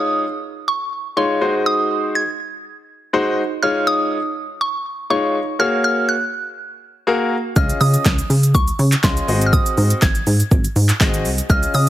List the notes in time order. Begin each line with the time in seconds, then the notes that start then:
Already playing: G#3 D#4 F4 C#5 D#6
0.68 C#6
1.17 G#3 D#4 F4 C#5 C6
1.41 G#3 D#4 F#4 C5
1.66 D#6
2.15 G#6
3.13 G#3 D#4 F#4 C5
3.63 G#3 D#4 F4 C#5 F6
3.87 D#6
4.61 C#6
5.10 G#3 D#4 F4 C#5 C#6
5.59 A#3 F#4 G#4 C#5 F6
5.84 F6
6.09 F#6
7.07 A#3 F#4 G#4 A#4
7.56 C#2 C#4 F4 G#4 D#5 F6, kick, shaker
7.69 closed hi-hat, shaker
7.81 C#3 D#6, open hi-hat, shaker
7.94 closed hi-hat, shaker
8.05 C#2, kick, snare, clap, shaker
8.18 closed hi-hat, shaker
8.30 C#3, open hi-hat, shaker
8.43 closed hi-hat, shaker
8.54 C#2 C#6, kick, shaker
8.68 closed hi-hat, shaker
8.79 C#3, open hi-hat, shaker
8.92 clap, closed hi-hat, shaker
9.03 C#2 C#4 F4 G#4 D#5 C6, kick, snare, clap, shaker
9.17 closed hi-hat, shaker
9.28 G#1 C4 F#4 G#4 D#5, open hi-hat, shaker
9.41 closed hi-hat, shaker
9.46 F6
9.53 D#6, kick, shaker
9.66 closed hi-hat, shaker
9.77 G#2, open hi-hat, shaker
9.90 closed hi-hat, shaker
10.02 G#1 G#6, kick, snare, clap, shaker
10.15 closed hi-hat, shaker
10.27 G#2, open hi-hat, shaker
10.40 closed hi-hat, shaker
10.51 G#1, kick, shaker
10.64 closed hi-hat, shaker
10.76 G#2, open hi-hat, shaker
10.89 clap, closed hi-hat, shaker
11.00 G#1 C4 F#4 G#4 D#5, kick, snare, clap, shaker
11.14 closed hi-hat, shaker
11.25 C2, open hi-hat, shaker
11.38 closed hi-hat, shaker
11.49 C#2 C#4 F4 G#4 D#5 F6, kick, shaker
11.63 closed hi-hat, shaker
11.74 C#3 D#6, open hi-hat, shaker